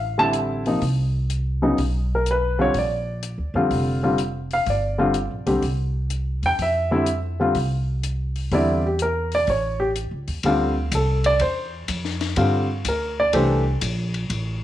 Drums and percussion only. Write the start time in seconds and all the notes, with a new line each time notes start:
0.33 closed hi-hat
0.66 open hi-hat
0.82 kick, open hi-hat
1.30 closed hi-hat
1.78 kick, open hi-hat
2.26 closed hi-hat
2.74 kick, open hi-hat
3.23 closed hi-hat
3.71 kick, open hi-hat
4.18 closed hi-hat
4.51 open hi-hat
4.66 kick, open hi-hat
5.14 closed hi-hat
5.47 open hi-hat
5.62 kick, open hi-hat
6.10 closed hi-hat
6.43 open hi-hat
6.59 kick, open hi-hat
7.06 closed hi-hat
7.55 kick, open hi-hat
8.03 closed hi-hat
8.36 open hi-hat
8.52 kick, open hi-hat
8.99 closed hi-hat
9.32 open hi-hat
9.47 kick, open hi-hat
9.96 closed hi-hat
10.28 open hi-hat
10.43 kick, ride
10.92 kick, hi-hat pedal, ride
11.24 ride
11.39 kick, ride
11.88 kick, hi-hat pedal, ride
12.05 snare
12.21 snare, ride
12.36 kick, ride
12.85 kick, hi-hat pedal, ride
13.33 kick, ride
13.81 kick, hi-hat pedal, ride
14.14 ride
14.30 kick, ride